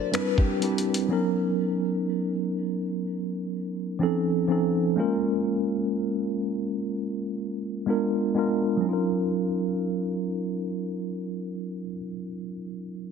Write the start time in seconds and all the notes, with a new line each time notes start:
Already playing: D4 F#4 A#4 C5 D5
0.12 G3 C4 D4 E4 B4, finger snap, closed hi-hat
0.16 B4
0.38 G4, kick
0.60 G3 C4 D4 E4, closed hi-hat
0.64 G4
0.78 closed hi-hat
0.94 closed hi-hat
1.08 F#3 B3 C#4 D#4
1.13 A#4
3.99 F3 C4 C#4 D#4
4.03 A4
4.48 F3 C4 C#4 D#4
4.52 A4
4.96 G#3 A#3 C#4 F4
5.00 A#4
7.86 G#3 B3 D4 F4 A#4
8.34 G#3 B3 D4 F4
8.39 A#4
8.77 F#3
8.81 C#4
8.85 D#4 F4
8.93 A#4